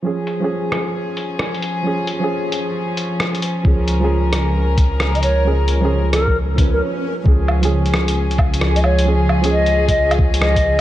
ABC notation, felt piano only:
X:1
M:4/4
L:1/16
Q:"Swing 16ths" 1/4=133
K:Dbmix
V:1 name="Felt piano"
[F,DA]3 [F,DA] z12 | [F,DA]3 [F,DA] z12 | [F,DA]3 [F,DA] z12 | [F,DA]3 [F,DA] z6 [F,Dc]2 z4 |
[F,DA]3 [F,DA] z12 | [F,DA]3 [F,DA] z12 |]